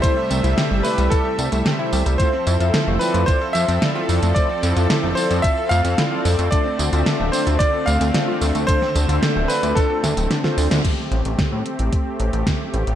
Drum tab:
CC |----------------|----------------|----------------|----------------|
HH |x-xxx-oxx-xxx-ox|x-xxx-oxx-xxx-ox|x-xxx-oxx-xxx-ox|x-xxx-oxx-xxx-ox|
TB |x-xxx-xxx-xxx-xx|x-xxx-xxx-xxx-xx|x-xxx-xxx-xxx-xx|x-xxx-xxx-xxx-xx|
SD |----o-------o---|----o-------o---|----o-------o---|----o-------o---|
BD |o-------o-------|o-------o-------|o-------o-------|o-------o-------|

CC |----------------|x---------------|
HH |x-xxx-oxx-xxx-ox|x-xxx-xxx-xxx-xx|
TB |x-xxx-xxx-xxx-xx|----------------|
SD |-o--o-----o-oo-o|----o-------o---|
BD |o-------o-------|o---o---o---o---|